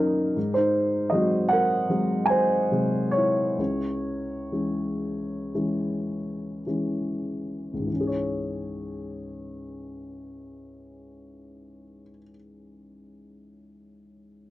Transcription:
0.00 0.32 F#2 soft
0.00 0.38 F#3 soft
0.00 0.38 A#3 soft
0.00 0.38 C#4 soft
0.00 0.51 D#4 soft
0.00 0.56 A#4 medium
0.36 3.55 G#2 soft
0.54 1.09 D#4 soft
0.54 1.08 C5 medium
1.10 1.88 F#3 soft
1.10 1.88 G#3 soft
1.10 1.88 C4 soft
1.10 1.51 D#5 medium
1.14 1.49 F#4 soft
1.49 2.27 A#4 soft
1.49 2.32 F#5 medium
1.90 2.69 F#3 soft
1.90 2.70 G#3 soft
1.90 2.69 C4 soft
2.26 3.09 G#5 medium
2.30 3.11 C5 medium
2.71 3.57 C3 soft
2.71 3.56 F#3 soft
2.71 3.57 G#3 soft
3.12 6.62 C#5 medium
3.17 6.64 E4 soft
3.59 7.72 C#2 soft
4.52 5.51 E3 soft
4.52 5.51 G#3 soft
4.52 5.52 C#4 soft
5.54 6.64 E3 soft
5.54 6.64 G#3 soft
5.54 6.65 C#4 soft
6.67 7.85 E3 soft
6.67 7.86 G#3 soft
6.67 7.86 C#4 soft
7.74 12.03 C#2 soft
7.79 12.08 G#2 soft
7.87 12.16 E3 soft
7.94 12.23 C#4 soft
8.01 12.29 G#4 soft
8.07 12.36 C#5 soft

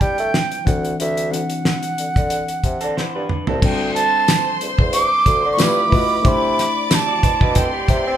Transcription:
0.00 0.69 G3 medium
0.00 0.15 G3 medium
0.00 0.66 C4 medium
0.00 0.67 D4 medium
0.00 0.69 E4 medium
0.00 0.69 B4 medium
0.00 0.69 C5 medium
0.00 0.68 G5 medium
0.00 kick medium
0.00 closed hi-hat soft
0.18 0.31 A3 loud
0.18 closed hi-hat soft
0.34 snare loud
0.52 closed hi-hat soft
0.65 0.93 D2 medium
0.65 1.23 E3 medium
0.65 1.23 C4 medium
0.65 1.24 D4 medium
0.65 1.24 F#4 medium
0.65 0.99 F#5 medium
0.65 kick medium
0.65 closed hi-hat medium
0.85 closed hi-hat soft
1.00 1.41 D2 loud
1.00 1.33 E5 medium
1.00 closed hi-hat medium
1.17 closed hi-hat medium
1.31 2.45 E3 medium
1.31 2.45 C4 medium
1.31 2.45 D4 medium
1.31 2.46 F#4 medium
1.31 3.29 F#5 medium
1.31 closed hi-hat medium
1.50 closed hi-hat medium
1.65 snare loud
1.83 closed hi-hat soft
1.98 2.06 D3 soft
1.98 closed hi-hat medium
2.16 2.43 D3 medium
2.16 kick medium
2.16 closed hi-hat soft
2.30 closed hi-hat medium
2.48 closed hi-hat medium
2.64 2.78 C3 medium
2.64 kick medium
2.64 closed hi-hat medium
2.81 2.95 D3 medium
2.81 2.96 C4 soft
2.81 2.96 A4 medium
2.81 closed hi-hat soft
2.97 3.04 G2 soft
2.97 3.14 E4 medium
2.97 3.14 C5 medium
2.97 snare medium
3.15 3.27 G2 medium
3.15 3.46 D4 medium
3.15 3.46 B4 medium
3.29 mid tom medium
3.47 3.60 C2 medium
3.47 3.79 C4 soft
3.47 3.79 A4 medium
3.47 floor tom medium
3.61 4.03 D2 medium
3.61 4.74 G3 medium
3.61 4.75 C4 medium
3.61 4.75 D4 medium
3.61 4.75 A4 medium
3.61 5.56 C5 medium
3.61 3.94 G5 medium
3.61 5.55 C6 medium
3.61 kick loud
3.61 crash medium
3.94 4.56 A5 loud
3.94 closed hi-hat medium
4.28 snare loud
4.28 closed hi-hat medium
4.28 tambourine medium
4.61 4.69 E2 soft
4.61 closed hi-hat medium
4.79 5.05 E2 medium
4.79 kick loud
4.93 5.49 D6 loud
4.93 closed hi-hat medium
5.26 5.41 D2 medium
5.26 kick medium
5.26 closed hi-hat medium
5.45 5.57 D3 loud
5.53 5.64 C#6 medium
5.57 5.86 G2 loud
5.57 5.86 A3 medium
5.57 5.87 E4 medium
5.57 5.87 F4 medium
5.57 6.23 B4 medium
5.57 5.88 B4 medium
5.57 6.23 B5 medium
5.57 snare loud
5.57 closed hi-hat medium
5.57 tambourine medium
5.63 6.30 D6 loud
5.89 6.19 B2 medium
5.89 6.19 A3 medium
5.89 6.19 E4 medium
5.89 6.20 F4 medium
5.89 6.20 B4 medium
5.89 kick medium
5.89 open hi-hat soft
6.22 6.66 C3 loud
6.22 7.36 A3 medium
6.22 7.36 D4 medium
6.22 7.37 E4 medium
6.22 7.37 C5 medium
6.22 7.53 D5 medium
6.22 7.53 D6 medium
6.22 kick loud
6.22 closed hi-hat medium
6.28 6.96 B5 loud
6.59 snare soft
6.59 closed hi-hat medium
6.91 7.08 G4 medium
6.91 7.07 E5 medium
6.91 snare loud
6.91 closed hi-hat medium
6.91 tambourine medium
6.95 7.59 A5 medium
7.08 7.22 F#4 medium
7.08 7.22 D5 medium
7.23 7.30 B2 soft
7.23 7.40 E4 soft
7.23 7.40 C5 medium
7.23 kick medium
7.23 closed hi-hat medium
7.40 7.67 B2 medium
7.40 7.55 D4 medium
7.40 7.55 B4 medium
7.40 kick medium
7.55 7.73 C4 medium
7.55 7.72 A4 medium
7.55 8.17 D5 medium
7.55 8.17 G5 medium
7.55 8.17 C6 medium
7.55 kick medium
7.55 closed hi-hat medium
7.74 8.17 B3 medium
7.74 8.17 G4 medium
7.88 8.03 C3 medium
7.88 kick medium
7.88 closed hi-hat medium
8.07 8.17 C4 medium

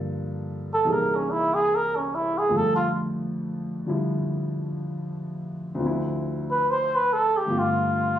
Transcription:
0.00 0.82 G2 medium
0.00 0.84 D3 soft
0.00 0.85 F3 medium
0.00 0.84 A#3 medium
0.00 0.88 A4 medium
0.74 0.94 A4 medium
0.84 2.49 C2 medium
0.84 2.49 C3 soft
0.84 2.49 E3 soft
0.84 2.50 A#3 soft
0.84 2.50 D#4 soft
0.84 2.50 G#4 medium
0.93 1.17 A#4 medium
1.15 1.32 C#4 medium
1.31 1.55 E4 medium
1.54 1.77 G#4 medium
1.75 1.97 A#4 medium
1.96 2.16 C#4 medium
2.15 2.40 E4 medium
2.38 2.58 G#4 medium
2.49 5.80 F2 medium
2.49 3.85 D3 soft
2.49 3.87 G3 soft
2.49 5.81 A3 soft
2.49 5.81 F4 medium
2.57 2.75 A4 loud
2.76 2.92 F4 medium
3.86 5.76 D3 soft
3.86 5.78 F3 soft
3.86 5.81 G3 soft
3.86 5.82 E4 soft
5.75 7.45 D2 medium
5.75 7.45 D3 soft
5.80 7.48 F3 soft
5.80 7.49 C4 soft
5.87 7.51 E4 medium
6.51 6.72 B4 medium
6.70 6.97 C5 loud
6.95 7.14 B4 medium
7.13 7.38 A4 medium
7.37 7.60 G4 medium
7.46 8.19 G2 medium
7.46 8.19 D3 soft
7.46 8.19 A3 soft
7.46 8.19 B3 medium
7.50 8.19 F4 medium
7.59 8.19 F4 medium

